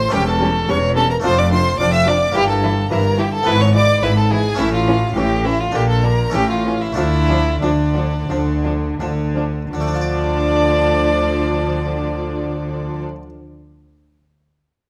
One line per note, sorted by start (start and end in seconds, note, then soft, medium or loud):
0.00 0.15 C5 loud
0.00 0.12 C6 loud
0.08 1.18 A3 medium
0.08 1.19 C#4 medium
0.08 1.20 G4 medium
0.13 0.62 E1 medium
0.13 0.62 E2 medium
0.13 0.59 E2 medium
0.13 0.21 G3 medium
0.13 0.21 C#4 medium
0.13 0.27 G4 loud
0.13 0.27 G5 loud
0.26 0.71 A4 medium
0.26 0.68 A5 loud
0.41 0.49 G3 medium
0.41 0.49 C#4 medium
0.68 1.18 E1 medium
0.68 1.17 E2 medium
0.68 1.15 E2 medium
0.68 0.76 G3 medium
0.68 0.76 C#4 medium
0.68 0.96 C#5 loud
0.68 0.76 C#6 loud
0.96 1.04 G3 medium
0.96 1.04 C#4 medium
0.96 1.09 A4 medium
0.96 1.10 A5 loud
1.10 1.16 A#4 medium
1.10 1.16 A#5 loud
1.20 1.32 F3 medium
1.20 2.30 A3 medium
1.20 2.31 D4 medium
1.20 2.31 F4 medium
1.24 1.73 F1 medium
1.24 1.73 F2 medium
1.24 1.70 F2 medium
1.24 1.32 D4 medium
1.24 1.40 C5 loud
1.24 1.38 C6 loud
1.38 1.52 D5 loud
1.38 1.52 D6 loud
1.51 1.59 F3 medium
1.51 1.60 D4 medium
1.51 1.79 C5 medium
1.51 1.79 C6 loud
1.79 2.29 F1 medium
1.79 2.29 F2 medium
1.79 2.26 F2 medium
1.79 1.87 F3 medium
1.79 1.88 D4 medium
1.79 1.93 D5 loud
1.79 1.93 D6 loud
1.93 2.10 E5 loud
1.93 2.08 E6 loud
2.07 2.15 F3 medium
2.07 2.15 D4 medium
2.07 2.35 D5 loud
2.07 2.35 D6 loud
2.31 2.84 G2 medium
2.31 2.43 E3 medium
2.31 3.42 A#3 medium
2.31 3.42 E4 medium
2.31 2.48 G4 loud
2.31 2.49 G5 loud
2.35 2.85 G1 medium
2.35 2.82 G2 medium
2.35 2.44 E4 medium
2.49 2.90 A4 medium
2.49 2.91 A5 loud
2.63 2.71 E3 medium
2.63 2.71 E4 medium
2.90 3.40 G1 medium
2.90 3.40 G2 medium
2.90 3.38 G2 medium
2.90 2.99 E3 medium
2.90 2.99 E4 medium
2.90 3.20 A#4 medium
2.90 3.18 A#5 loud
3.18 3.26 E3 medium
3.18 3.27 E4 medium
3.18 3.32 G4 medium
3.18 3.33 G5 loud
3.33 3.48 A4 loud
3.33 3.47 A5 loud
3.43 3.96 G#2 medium
3.43 3.55 E3 medium
3.43 4.54 B3 medium
3.43 4.54 E4 medium
3.43 3.62 B4 loud
3.43 3.60 B5 loud
3.47 3.96 G#1 loud
3.47 3.94 G#2 medium
3.47 3.55 E4 medium
3.61 3.74 C#5 loud
3.61 3.75 C#6 loud
3.74 3.83 E3 medium
3.74 3.84 E4 medium
3.74 4.04 D5 loud
3.74 4.02 D6 loud
4.02 4.52 G#1 medium
4.02 4.52 G#2 medium
4.02 4.50 G#2 medium
4.02 4.11 E3 medium
4.02 4.11 E4 medium
4.02 4.16 B4 medium
4.02 4.16 B5 loud
4.17 4.32 A4 medium
4.17 4.31 A5 loud
4.31 4.39 E3 medium
4.31 4.39 E4 medium
4.31 4.60 G#4 medium
4.31 4.58 G#5 loud
4.55 5.09 A2 medium
4.55 4.66 E3 medium
4.55 5.69 A3 medium
4.55 5.69 C#4 medium
4.55 5.70 E4 medium
4.59 5.09 A1 medium
4.59 5.06 A2 medium
4.59 4.67 C#4 medium
4.59 4.73 E4 loud
4.59 4.73 E5 loud
4.72 5.14 F4 medium
4.72 5.15 F5 loud
4.87 4.95 E3 medium
4.87 4.96 C#4 medium
5.15 5.67 A1 medium
5.15 5.67 A2 medium
5.15 5.65 A2 medium
5.15 5.24 E3 medium
5.15 5.24 C#4 medium
5.15 5.47 G4 medium
5.15 5.44 G5 loud
5.44 5.52 E3 medium
5.44 5.53 C#4 medium
5.44 5.61 E4 medium
5.44 5.59 E5 loud
5.60 5.77 F4 medium
5.60 5.75 F5 loud
5.72 6.27 A#1 medium
5.72 6.27 A#2 medium
5.72 6.24 A#2 medium
5.72 5.82 D3 medium
5.72 6.31 D4 medium
5.72 5.82 D4 medium
5.72 5.89 G4 loud
5.72 5.80 G5 loud
5.89 6.06 A4 medium
5.89 6.04 A5 loud
6.04 6.12 D3 medium
6.04 6.12 D4 medium
6.04 6.34 A#4 medium
6.04 6.34 A#5 loud
6.30 6.91 A3 medium
6.30 6.94 C#4 medium
6.30 6.94 E4 medium
6.34 6.89 A1 medium
6.34 6.87 A2 medium
6.34 6.90 A2 medium
6.34 6.42 E3 medium
6.34 6.42 C#4 medium
6.34 6.49 G4 medium
6.34 6.50 G5 loud
6.50 6.83 F4 medium
6.50 6.81 F5 medium
6.65 6.73 E3 medium
6.65 6.74 C#4 medium
6.81 6.96 E4 medium
6.81 6.96 E5 medium
6.93 9.66 A3 medium
6.93 9.67 D4 medium
6.93 7.05 D4 medium
6.93 9.68 F4 medium
6.97 7.54 D2 medium
6.97 7.55 D3 medium
6.97 7.52 D3 medium
6.97 7.05 F3 medium
6.97 7.61 E4 loud
6.97 7.61 E5 loud
7.29 7.38 F3 medium
7.29 7.37 D4 medium
7.62 8.22 D2 medium
7.62 8.22 D3 medium
7.62 8.19 D3 medium
7.62 7.70 F3 medium
7.62 8.97 D4 medium
7.62 7.71 D4 medium
7.62 9.00 D5 medium
7.95 8.04 F3 medium
7.95 8.03 D4 medium
8.29 8.91 D2 medium
8.29 8.91 D3 medium
8.29 8.89 D3 medium
8.29 8.38 F3 medium
8.29 8.37 D4 medium
8.64 8.73 F3 medium
8.64 8.72 D4 medium
9.00 9.64 D2 medium
9.00 9.64 D3 medium
9.00 9.62 D3 medium
9.00 9.08 F3 medium
9.00 9.08 D4 medium
9.36 9.44 F3 medium
9.36 9.44 D4 medium
9.72 13.01 D2 medium
9.72 13.01 D3 medium
9.72 13.02 F3 medium
9.72 13.00 D4 medium
9.72 13.01 D5 medium
9.80 13.08 A3 medium
9.87 13.15 D4 medium
9.94 13.22 F4 medium
10.01 13.29 D5 medium